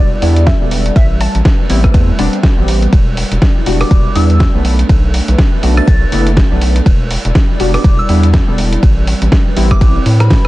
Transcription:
Already playing: E1 G3 B3 D4 E4 F#4 D5
0.22 E2 G3 B3 D4 E4, open hi-hat
0.36 closed hi-hat
0.47 E5, kick, snare, closed hi-hat, ride
0.61 E1 G3 B3 D4 A4
0.71 open hi-hat
0.86 closed hi-hat
0.96 A1 A3 B4 E5, kick, closed hi-hat, ride
1.20 A5, open hi-hat
1.35 A1, closed hi-hat
1.45 kick, snare, closed hi-hat, ride
1.69 A1 G3 B3 C4 E4, open hi-hat
1.84 G3 C4 E4, kick, cross-stick, closed hi-hat
1.94 E2, kick, closed hi-hat, ride
2.19 E1 G3 B3 C4 D4, open hi-hat
2.33 closed hi-hat
2.43 kick, snare, closed hi-hat, ride
2.58 A1 G3 B3 C4 G4
2.68 open hi-hat
2.82 closed hi-hat
2.93 E1 E4 D5, kick, closed hi-hat, ride
3.17 open hi-hat
3.31 E1, closed hi-hat
3.42 kick, snare, closed hi-hat, ride
3.66 E1 G3 B3 D4 F#4, open hi-hat
3.80 G3 B3 D4 F#4 D6, cross-stick, open hi-hat
3.91 E1, kick, closed hi-hat, ride
4.15 E2 G3 B3 D4 E4 E6, open hi-hat
4.30 closed hi-hat
4.40 kick, snare, closed hi-hat, ride
4.54 B1 A3 B3 D4 B4
4.64 A3 D4 B4, open hi-hat
4.79 closed hi-hat
4.89 B1, kick, closed hi-hat, ride
5.14 open hi-hat
5.28 B1, closed hi-hat
5.38 kick, snare, closed hi-hat, ride
5.63 B1 A3 B3 D4 F#4, open hi-hat
5.77 A3 B3 D4 F#4 A6, cross-stick, closed hi-hat
5.88 B1, kick, closed hi-hat, ride
6.12 F#1 A3 B3 D4 E4, open hi-hat
6.27 closed hi-hat
6.37 kick, snare, closed hi-hat, ride
6.51 B1 A3 B3 D4 B4
6.61 open hi-hat
6.76 closed hi-hat
6.86 E1 G3 E4 D5, kick, closed hi-hat, ride
7.11 open hi-hat
7.25 E1, closed hi-hat
7.35 kick, snare, closed hi-hat, ride
7.60 E1 G3 B3 D4 F#4, open hi-hat
7.74 G3 B3 D4 F#4 D6, cross-stick, open hi-hat
7.84 E1, kick, closed hi-hat, ride
7.99 E6
8.09 E2 G3 B3 D4 E4 E6, open hi-hat
8.23 closed hi-hat
8.34 kick, snare, closed hi-hat, ride
8.48 E1 G3 B3 D4 A4
8.58 open hi-hat
8.73 closed hi-hat
8.83 A1 C4 B4, kick, closed hi-hat, ride
9.07 open hi-hat
9.22 A1, closed hi-hat
9.32 kick, snare, closed hi-hat, ride
9.56 A1 G3 B3 C4 E4, open hi-hat
9.71 G3 B3 E4 D6, kick, cross-stick, closed hi-hat
9.81 A1, kick, closed hi-hat, ride
10.06 A2, open hi-hat
10.20 B5, cross-stick, closed hi-hat
10.30 kick, snare, open hi-hat, ride
10.45 A1, cross-stick

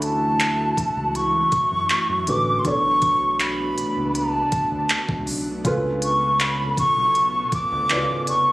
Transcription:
Already playing: D2 E3 A3 C#4 D4 E4 F#4 E5
0.02 A5, closed hi-hat
0.40 clap, closed hi-hat
0.77 C#2, kick, closed hi-hat
0.97 C#2
1.15 C#6, closed hi-hat
1.52 F#2, kick, closed hi-hat
1.72 F#2
1.89 clap, closed hi-hat
2.09 F#2
2.27 A1 D3 A3 C#4 F#4 B4 D6, closed hi-hat
2.59 C6
2.65 B1 B2 A3 B3 D4 A4 C#5 C#6, kick, closed hi-hat
3.02 kick, closed hi-hat
3.40 B5, clap, closed hi-hat
3.78 C#2, closed hi-hat
3.97 C#2
4.15 A5, closed hi-hat
4.52 D2, kick, closed hi-hat
4.72 D2
4.89 clap, closed hi-hat
5.09 C#2, kick
5.27 B1, open hi-hat
5.64 C#2 C#3 B3 C#4 F4 A4 B4, kick, closed hi-hat
6.02 C#6, closed hi-hat
6.40 B5, clap, closed hi-hat
6.77 B1 C#6, kick, closed hi-hat
6.97 B1
7.15 closed hi-hat
7.52 D2 D6, kick, closed hi-hat
7.72 D2
7.89 C#2 C#3 C#4 E4 B4 D5, clap, closed hi-hat
7.97 F4
8.09 G#1
8.27 F1 C#6, closed hi-hat

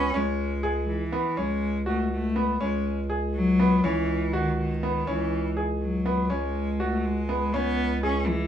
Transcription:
Already playing: C#2 C#4
0.14 C#2 G#3 C#4
0.63 G#4
0.88 E3
1.12 B3
1.37 C#2 G#3 C#4
1.86 A3 F#4
2.11 A3
2.36 B3
2.60 C#2 G#3 C#4
3.10 G#4
3.34 F#3
3.60 B3
3.83 C#2 E3 C#4
4.33 D#3 F#4
4.58 D#3
4.83 B3
5.07 C#2 E3 C#4
5.57 G#4
5.81 F#3
6.06 B3
6.30 C#2 G#3 C#4
6.80 A3 F#4
7.05 G#3
7.29 B3
7.54 C#2 B3 C#4
8.03 C#4 G#4
8.27 E3

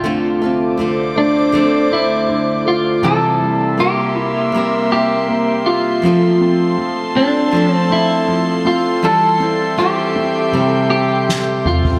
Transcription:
Already playing: F4
0.03 D3 A3 C4 F4 A4 C5 D5 D6
0.41 A3 F4 A4
0.45 C4
0.77 D3 A3 C4 F4 A4
1.15 A3 D4
1.52 D3 A3 C4
1.57 A4
1.91 A3 E4
2.29 D3
2.65 A3 F4
3.02 C3 E3 G3 A#3 C4 E4 A4 E5 C6
3.40 G3
3.77 G3 A#3 C4 E4 G4 A#4
4.15 E4
4.52 C3 G3 A#3 C4
4.57 A#4
4.90 G4 E5
5.28 A#3
5.66 F4 G4
6.02 F3 A3 C4 F4 A4 A5
6.07 A4
6.41 C4
6.78 F3
7.15 C4 D4
7.52 F3 A3 C4
7.57 A4
7.74 C4
7.90 C4 E4
8.28 F3
8.65 C4 F4
9.03 E3 G3 C4 E4 A4 E5 G5
9.40 C4 E4 A4
9.77 E3 G3 C4 E4 G4 A4
10.16 C4
10.52 C3 G3 C4
10.57 A4
10.90 C4 G4
11.29 snare
11.65 C4 F4, mid tom
11.84 floor tom

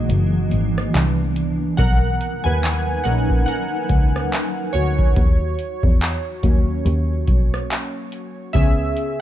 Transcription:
Already playing: E3 F#3 G#3 A#3 D#4 F#4 D#5
0.09 F#1, closed hi-hat
0.51 G#1, closed hi-hat
0.78 cross-stick
0.93 C2 E3 B3 D4, clap, closed hi-hat
1.36 closed hi-hat
1.77 B1 F#3 D#4 A#4 F#5, kick, closed hi-hat
2.21 closed hi-hat
2.44 D#2 B4 G#5
2.63 clap, closed hi-hat
3.04 A#1 A#3 C#4 D#4 A#4 F#5, closed hi-hat
3.30 kick
3.46 A#4 F#5, closed hi-hat
3.89 C#2, kick, closed hi-hat
4.16 cross-stick
4.33 clap, closed hi-hat
4.73 D2 F#4 C#5, closed hi-hat
4.99 kick
5.16 D#2, kick, closed hi-hat
5.59 closed hi-hat
5.83 E2, kick
6.01 clap, closed hi-hat
6.43 D#2 F#3 A#3 C#4, kick, closed hi-hat
6.85 D#2, closed hi-hat
7.27 B1, kick, closed hi-hat
7.54 cross-stick
7.71 clap, closed hi-hat
8.12 closed hi-hat
8.53 C#2 C#3 B3 C#4 G#4 E5, kick, closed hi-hat
8.97 closed hi-hat

